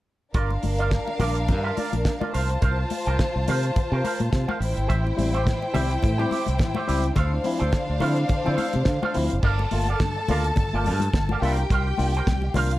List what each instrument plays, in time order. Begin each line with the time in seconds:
0.34 fingered electric bass G1, violin section D4 A#4 F5, clean electric guitar F4 A#4 D5, kick, closed hi-hat
0.50 muted clean electric guitar stroke, muted conga
0.62 fingered electric bass G1, muted clean electric guitar stroke, open hi-hat, high conga
0.79 clean electric guitar F4 A#4 D5, closed hi-hat
0.91 muted clean electric guitar stroke, kick, snare, closed hi-hat
1.07 muted clean electric guitar stroke, muted conga
1.19 fingered electric bass A#1, clean electric guitar F4 A#4 D5, open hi-hat, high conga, low conga
1.35 muted clean electric guitar stroke, closed hi-hat
1.47 fingered electric bass G2, muted clean electric guitar stroke, kick, closed hi-hat, low conga
1.63 clean electric guitar F4 A#4 E5
1.77 clean electric guitar F4 A#4 D5, open hi-hat, high conga
1.93 fingered electric bass A#1, muted clean electric guitar stroke, closed hi-hat, high conga
2.04 muted clean electric guitar stroke, kick, snare, closed hi-hat
2.20 clean electric guitar F4 A#4 D5, high conga
2.33 fingered electric bass C2, violin section F4 C5 A5, clean electric guitar A#4 C5 F5, open hi-hat
2.49 muted clean electric guitar stroke, closed hi-hat
2.61 fingered electric bass C2, clean electric guitar A#4 C5 F5, kick, closed hi-hat, muted conga
2.77 muted clean electric guitar stroke
2.90 muted clean electric guitar stroke, open hi-hat, high conga
3.06 fingered electric bass C2, clean electric guitar A#4 C5 G5, closed hi-hat
3.19 muted clean electric guitar stroke, kick, snare, closed hi-hat, muted conga
3.36 fingered electric bass C2, muted clean electric guitar stroke
3.48 fingered electric bass C3, clean electric guitar A#4 C5 F5, open hi-hat, high conga, low conga
3.63 muted clean electric guitar stroke, closed hi-hat
3.76 muted clean electric guitar stroke, muted fingered electric bass stroke, kick, closed hi-hat, low conga
3.92 fingered electric bass C3, clean electric guitar A#4 C5 G5
4.04 clean electric guitar A#4 C5 F5, open hi-hat, high conga
4.20 fingered electric bass A#2, muted clean electric guitar stroke, closed hi-hat, high conga
4.32 fingered electric bass C3, muted clean electric guitar stroke, kick, snare, closed hi-hat, muted conga
4.48 clean electric guitar A#4 C5 F5, high conga
4.60 fingered electric bass A1, violin section E4 C5 G5, muted clean electric guitar stroke, open hi-hat
4.76 fingered electric bass G#1, muted clean electric guitar stroke, closed hi-hat
4.88 fingered electric bass A1, tine electric piano A2 E3, clean electric guitar G4 C5 E5, kick, closed hi-hat, muted conga
5.05 tine electric piano C4 E4, muted clean electric guitar stroke, muted conga
5.17 fingered electric bass A1, tine electric piano G3 C4 E4, muted clean electric guitar stroke, open hi-hat, high conga
5.33 clean electric guitar G4 C5 E5, closed hi-hat
5.45 tine electric piano A2 E3, muted clean electric guitar stroke, kick, snare, closed hi-hat
5.61 muted clean electric guitar stroke, muted conga
5.73 fingered electric bass C2, tine electric piano G3 C4 E4, clean electric guitar G4 C5 E5, open hi-hat, high conga, low conga
5.89 tine electric piano C4 E4, muted clean electric guitar stroke, closed hi-hat
6.02 fingered electric bass A2, tine electric piano A2 E3, muted clean electric guitar stroke, kick, closed hi-hat, muted conga, low conga
6.18 tine electric piano G3 C4 E4, clean electric guitar G4 C5 G5, muted conga
6.31 tine electric piano C4 E4, clean electric guitar G4 C5 E5, open hi-hat, high conga
6.46 fingered electric bass C2, muted clean electric guitar stroke, closed hi-hat, high conga
6.59 tine electric piano A2 E3, muted clean electric guitar stroke, kick, snare, closed hi-hat, muted conga
6.74 clean electric guitar G4 C5 E5, muted conga, high conga
6.87 fingered electric bass C#2, tine electric piano G3 C4 E4, clean electric guitar G4 C5 E5, open hi-hat
7.02 tine electric piano C4 E4, muted clean electric guitar stroke, closed hi-hat
7.15 fingered electric bass D2, tine electric piano D3, violin section D4 C5 F5, clean electric guitar A4 C5 F5, kick, closed hi-hat, muted conga, low conga
7.32 tine electric piano C4 E4, muted clean electric guitar stroke
7.44 tine electric piano F3 C4 E4, muted clean electric guitar stroke, open hi-hat, high conga
7.59 fingered electric bass D2, clean electric guitar A4 C5 G5, closed hi-hat
7.72 tine electric piano D3, muted clean electric guitar stroke, kick, snare, closed hi-hat, muted conga
7.88 fingered electric bass D2, muted clean electric guitar stroke
8.00 fingered electric bass D3, tine electric piano F3 C4 E4, clean electric guitar A4 C5 F5, open hi-hat, high conga, low conga
8.16 tine electric piano C4 E4, muted clean electric guitar stroke, closed hi-hat
8.29 tine electric piano D3, muted clean electric guitar stroke, kick, closed hi-hat, low conga
8.45 fingered electric bass D3, tine electric piano F3 C4 E4, clean electric guitar A4 C5 G5, muted conga
8.56 tine electric piano C4 E4, clean electric guitar A4 C5 F5, open hi-hat, high conga
8.73 fingered electric bass C3, muted clean electric guitar stroke, closed hi-hat, high conga
8.85 fingered electric bass D3, tine electric piano D3, muted clean electric guitar stroke, kick, snare, closed hi-hat
9.02 clean electric guitar A4 C5 F5, muted conga, high conga
9.14 fingered electric bass D2, tine electric piano F3 C4 E4, muted clean electric guitar stroke, open hi-hat
9.30 fingered electric bass F#1, tine electric piano C4 E4, muted clean electric guitar stroke, closed hi-hat
9.43 fingered electric bass G1, tine electric piano G2 D3, violin section A4 A5, clean electric guitar A#4 D5 F5, kick, crash, muted conga
9.59 tine electric piano A#3 F4, muted clean electric guitar stroke, muted conga
9.71 fingered electric bass G1, tine electric piano A3 A#3 F4, muted clean electric guitar stroke, open hi-hat, high conga
9.87 clean electric guitar A#4 D5 F5, closed hi-hat
10.00 tine electric piano G2 D3, kick, snare, closed hi-hat, muted conga, high conga
10.16 muted clean electric guitar stroke
10.28 fingered electric bass D2, tine electric piano A3 A#3 F4, clean electric guitar A#4 D5 F5, open hi-hat, high conga, low conga
10.44 tine electric piano A#3 F4, muted clean electric guitar stroke, closed hi-hat
10.56 tine electric piano G2 D3, muted clean electric guitar stroke, kick, closed hi-hat, muted conga, low conga
10.73 fingered electric bass G1, tine electric piano A3 A#3 F4, clean electric guitar A#4 D5 G5
10.85 fingered electric bass G2, clean electric guitar A#4 D5 F5, open hi-hat, high conga
11.00 closed hi-hat, high conga
11.13 fingered electric bass G1, tine electric piano G2 D3, muted clean electric guitar stroke, kick, snare, closed hi-hat, muted conga
11.29 clean electric guitar D5 F5, high conga
11.33 clean electric guitar A#4
11.41 fingered electric bass C2, tine electric piano A#3 D4 F4, violin section G4 G5, clean electric guitar A#4 C5 F5, open hi-hat
11.57 tine electric piano D4 F4, muted clean electric guitar stroke, closed hi-hat
11.70 fingered electric bass C2, tine electric piano C3 G3, clean electric guitar A#4 C5 F5, kick, closed hi-hat
11.86 tine electric piano D4 F4, muted clean electric guitar stroke
11.98 fingered electric bass C2, tine electric piano A#3 D4 F4, muted clean electric guitar stroke, open hi-hat, high conga
12.15 clean electric guitar A#4 C5 G5, closed hi-hat
12.27 fingered electric bass C2, tine electric piano C3 G3, kick, snare, closed hi-hat, high conga
12.42 muted clean electric guitar stroke, muted conga
12.53 fingered electric bass C2, tine electric piano A#3 D4 F4, violin section F4 F5, clean electric guitar A#4 C5 F5, open hi-hat, high conga, low conga
12.71 tine electric piano D4 F4, muted clean electric guitar stroke, closed hi-hat